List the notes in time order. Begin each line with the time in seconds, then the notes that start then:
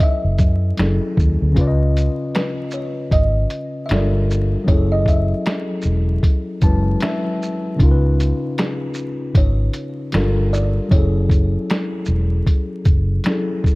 Already playing: F#3 C#4 E4 A4 G#5
0.00 E5, kick, closed hi-hat
0.24 F#1
0.39 F#2, kick, closed hi-hat, shaker
0.77 F#1 F#3 C#4 E4 G#4, finger snap, snare, closed hi-hat
0.81 A4
1.17 D#2, kick, shaker
1.42 D2
1.52 C#3 C#4
1.56 C#2 F4 B4, kick, closed hi-hat
1.61 D5
1.67 D#5
1.97 closed hi-hat, shaker
2.35 B4, finger snap, snare, closed hi-hat
2.71 C#5, shaker
3.11 G#1 D#5, kick, closed hi-hat
3.50 closed hi-hat, shaker
3.86 E5, closed hi-hat
3.90 G1 G3 D4 F4 A4 D5, finger snap, snare
3.94 A#4
4.31 shaker
4.64 F#1 F#3 C#4, kick, closed hi-hat
4.68 E4 G#4 C#5
4.73 A4
4.92 D#5
5.06 E5, kick, closed hi-hat, shaker
5.46 finger snap, snare, closed hi-hat
5.82 E1, shaker
6.23 kick, closed hi-hat
6.62 F#1 F#3 G#3 C#4 E4 B4 A5, kick, closed hi-hat, shaker
7.01 E5, finger snap, snare, closed hi-hat
7.43 shaker
7.76 C#3 C#4, kick, closed hi-hat
7.80 C#2 D#4 F4
7.85 A#4
7.91 B4
8.20 closed hi-hat, shaker
8.58 G#4, finger snap, snare, closed hi-hat
8.94 shaker
9.35 G#1 C#5, kick, closed hi-hat
9.73 closed hi-hat, shaker
10.12 G1 G3 D4 F4 A4, finger snap, snare, closed hi-hat
10.17 A#4
10.53 D5, shaker
10.89 F#1 F#3 C#4 C#5, kick, closed hi-hat
10.93 E4 G#4
10.97 A4
11.29 kick, closed hi-hat, shaker
11.70 finger snap, snare, closed hi-hat
12.06 E1, shaker
12.47 kick, closed hi-hat
12.85 F#1, kick, closed hi-hat, shaker
13.24 F#3 C#4 E4 G#4, finger snap, snare, closed hi-hat
13.28 A4
13.64 kick, shaker